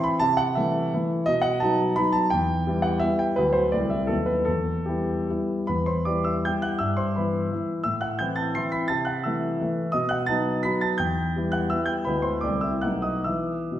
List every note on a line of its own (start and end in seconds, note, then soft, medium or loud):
0.00 0.20 E3 soft
0.00 0.20 C4 soft
0.00 0.21 E4 soft
0.00 0.21 B5 medium
0.20 0.55 C3 medium
0.20 0.38 A5 loud
0.37 0.56 F#5 medium
0.55 0.89 E3 medium
0.55 0.89 A3 soft
0.55 0.89 E4 medium
0.55 1.09 E5 medium
0.94 1.23 E3 soft
0.94 1.24 A3 soft
0.94 1.24 E4 soft
1.26 1.61 B2 medium
1.26 1.43 D#5 loud
1.42 1.60 F#5 medium
1.60 1.94 F#3 medium
1.60 1.95 B3 medium
1.60 1.95 D#4 medium
1.60 1.97 A5 medium
1.96 2.28 F#3 soft
1.96 2.28 B3 soft
1.96 2.28 D#4 soft
1.96 2.14 B5 loud
2.12 2.30 A5 medium
2.30 2.66 E2 medium
2.30 2.84 G5 loud
2.67 2.98 G3 soft
2.67 2.99 B3 soft
2.67 2.99 E4 medium
2.82 3.01 F#5 medium
3.00 3.33 G3 soft
3.00 3.33 B3 soft
3.00 3.33 E4 soft
3.00 3.18 E5 medium
3.19 3.36 G5 medium
3.36 3.73 D2 medium
3.36 3.70 F#3 soft
3.36 3.70 B3 soft
3.36 3.71 F#4 soft
3.36 3.54 B4 medium
3.53 3.72 C5 medium
3.72 4.10 C2 soft
3.72 4.07 A3 soft
3.72 4.07 C4 soft
3.72 4.07 E4 soft
3.72 3.91 D5 medium
3.90 4.09 E5 medium
4.07 4.45 D#2 soft
4.07 4.43 F#3 soft
4.07 4.44 B3 soft
4.07 4.44 F#4 soft
4.07 4.27 A4 medium
4.26 4.46 B4 medium
4.45 4.86 E2 soft
4.45 4.86 A4 medium
4.86 5.24 G3 soft
4.86 5.24 B3 soft
4.86 5.25 E4 soft
4.86 5.27 G4 soft
5.29 5.64 G3 soft
5.29 5.65 B3 soft
5.29 5.65 E4 soft
5.67 6.05 E2 soft
5.67 5.85 B4 medium
5.67 5.86 B5 medium
5.86 6.05 C5 medium
5.86 6.06 C6 medium
6.05 6.41 G3 soft
6.05 6.42 B3 soft
6.05 6.42 E4 soft
6.05 6.25 D5 soft
6.05 6.26 D6 medium
6.24 6.43 E5 medium
6.24 6.44 E6 medium
6.45 6.77 G3 soft
6.45 6.78 B3 soft
6.45 6.78 E4 soft
6.45 6.62 G5 medium
6.45 6.63 G6 medium
6.62 6.79 F#5 medium
6.62 6.79 F#6 medium
6.79 7.14 G2 soft
6.79 6.96 E5 medium
6.79 6.96 E6 medium
6.97 7.14 C5 soft
6.97 7.15 C6 medium
7.16 7.49 E3 soft
7.16 7.50 B3 soft
7.16 7.50 E4 soft
7.16 7.66 B4 soft
7.16 7.69 B5 medium
7.52 7.83 E3 soft
7.52 7.83 B3 soft
7.52 7.83 E4 soft
7.84 8.19 A2 soft
7.84 8.01 E5 medium
7.84 8.02 E6 medium
8.01 8.19 F#5 medium
8.01 8.19 F#6 medium
8.19 8.52 E3 soft
8.19 8.53 C4 soft
8.19 8.52 E4 soft
8.19 8.37 G5 medium
8.19 8.37 G6 medium
8.36 8.54 A5 medium
8.36 8.54 A6 medium
8.55 8.86 E3 soft
8.55 8.87 C4 soft
8.55 8.87 E4 soft
8.55 8.71 C6 medium
8.55 8.72 C7 medium
8.72 8.88 B5 medium
8.72 8.89 B6 medium
8.88 9.25 C3 soft
8.88 9.06 A5 medium
8.88 9.06 A6 medium
9.05 9.24 F#5 medium
9.05 9.24 F#6 medium
9.24 9.57 E3 soft
9.24 9.57 A3 soft
9.24 9.58 E4 soft
9.24 9.73 E5 soft
9.24 9.76 E6 medium
9.61 9.90 E3 soft
9.61 9.91 A3 soft
9.61 9.91 E4 soft
9.92 10.28 B2 medium
9.92 10.09 D#5 medium
9.92 10.10 D#6 medium
10.09 10.27 F#5 medium
10.09 10.28 F#6 medium
10.26 10.61 F#3 soft
10.26 10.61 B3 soft
10.26 10.61 D#4 soft
10.26 10.62 A5 medium
10.26 10.63 A6 medium
10.63 10.96 F#3 soft
10.63 10.96 B3 soft
10.63 10.96 D#4 soft
10.63 10.80 B5 medium
10.63 10.81 B6 medium
10.81 10.97 A5 medium
10.81 10.98 A6 medium
10.98 11.35 E2 soft
10.98 11.51 G5 medium
10.98 11.54 G6 medium
11.36 11.69 G3 soft
11.36 11.69 B3 soft
11.36 11.69 E4 soft
11.52 11.70 F#5 medium
11.52 11.71 F#6 medium
11.70 12.04 G3 soft
11.70 12.03 B3 soft
11.70 12.04 E4 soft
11.70 11.88 E5 medium
11.70 11.88 E6 medium
11.86 12.05 G5 medium
11.86 12.05 G6 medium
12.05 12.43 D2 soft
12.05 12.41 G#3 soft
12.05 12.41 B3 soft
12.05 12.42 E4 soft
12.05 12.24 B4 medium
12.05 12.24 B5 medium
12.22 12.43 C5 soft
12.22 12.43 C6 medium
12.41 12.84 C2 soft
12.41 12.80 A3 soft
12.41 12.81 C4 soft
12.41 12.81 E4 soft
12.41 12.63 D5 medium
12.41 12.63 D6 medium
12.61 12.83 E5 soft
12.61 12.83 E6 medium
12.81 13.25 B1 soft
12.81 13.22 A3 soft
12.81 13.22 B3 soft
12.81 13.23 D#4 soft
12.81 13.03 F#5 medium
12.81 13.04 F#6 medium
13.02 13.24 D#5 soft
13.02 13.25 D#6 medium
13.24 13.58 E3 soft
13.24 13.62 B3 soft
13.24 13.63 E4 soft
13.24 13.79 E5 soft
13.24 13.79 E6 medium
13.71 13.79 B2 soft